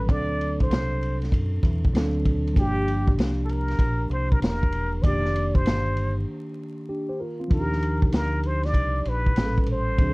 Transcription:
Already playing: tine electric piano A4, muted trumpet B4
0.07 fingered electric bass D2, tine electric piano F#3 C4 D4, muted trumpet D5, kick, ride
0.13 tine electric piano A4
0.41 ride
0.60 muted trumpet C5, kick, ride
0.70 fingered electric bass C2, snare, hi-hat pedal, ride
1.02 ride
1.22 snare, ride
1.32 fingered electric bass F#2, kick, ride
1.63 fingered electric bass E2, kick, ride
1.85 kick
1.93 fingered electric bass D2, tine electric piano F#3 C4 D4 A4, snare, hi-hat pedal, ride
2.25 kick, ride
2.47 ride
2.53 fingered electric bass G1, tine electric piano F3 A#3, kick, ride
2.57 tine electric piano D4 F#4, muted trumpet G4
2.65 tine electric piano G4
2.88 ride
3.07 kick
3.18 fingered electric bass C2, snare, hi-hat pedal, ride
3.45 muted trumpet A4
3.49 muted trumpet A#4, ride
3.68 snare, ride
3.78 fingered electric bass A#1, kick, ride
4.10 fingered electric bass C2, muted trumpet C5, ride
4.32 muted trumpet A#4, kick
4.42 fingered electric bass E1, muted trumpet A#4, snare, hi-hat pedal, ride
4.63 kick
4.72 ride
5.02 fingered electric bass F1, tine electric piano D#3 A#3 D4, muted trumpet D5, kick, ride
5.08 tine electric piano G4
5.25 snare
5.36 ride
5.55 muted trumpet C5, kick
5.66 fingered electric bass G1, snare, hi-hat pedal, ride
5.96 ride
6.89 tine electric piano D4 G4
7.09 tine electric piano G4 C5
7.20 tine electric piano F4 A#4
7.40 tine electric piano C4 F4
7.48 fingered electric bass D#2, tine electric piano F3 D4, kick, ride
7.52 tine electric piano D#4 F4, muted trumpet A#4
7.60 tine electric piano G4
7.72 snare
7.82 ride
8.02 kick
8.12 fingered electric bass D2, muted trumpet A#4, snare, hi-hat pedal, ride
8.43 muted trumpet C5, ride
8.63 muted trumpet D5, snare, ride
8.74 fingered electric bass C2, kick, ride
9.05 fingered electric bass A#1, muted trumpet B4, ride
9.26 kick
9.36 fingered electric bass A1, tine electric piano A#2 G3 C#4 G#4, snare, hi-hat pedal, ride
9.45 tine electric piano A4
9.58 kick
9.66 ride
9.71 muted trumpet C5
9.98 fingered electric bass D2, tine electric piano F#3 C4 D4, kick, ride
10.03 tine electric piano G#4
10.10 tine electric piano A4

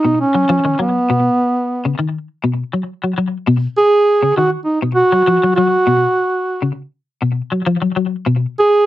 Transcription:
Already playing: duduk D#4
0.05 clean electric guitar B2
0.20 duduk C#4
0.35 clean electric guitar F#3
0.49 clean electric guitar F3
0.65 clean electric guitar D#3
0.79 clean electric guitar F#3, duduk B3
1.10 clean electric guitar B2
1.85 clean electric guitar C#3
1.99 clean electric guitar D#3
2.44 clean electric guitar B2
2.73 clean electric guitar F#3
3.04 clean electric guitar F#3
3.18 clean electric guitar F#3
3.47 clean electric guitar B2
3.77 duduk G#4
4.22 clean electric guitar C#3
4.37 clean electric guitar D#3, duduk F#4
4.65 duduk D#4
4.82 clean electric guitar B2
4.94 duduk F#4
5.12 clean electric guitar F#3
5.27 clean electric guitar F3
5.43 clean electric guitar F#3
5.56 clean electric guitar F#3, duduk F#4
5.87 clean electric guitar B2
6.62 clean electric guitar C#3
7.22 clean electric guitar B2
7.52 clean electric guitar F#3
7.66 clean electric guitar F3
7.82 clean electric guitar F#3
7.96 clean electric guitar F#3
8.26 clean electric guitar B2
8.59 duduk G#4

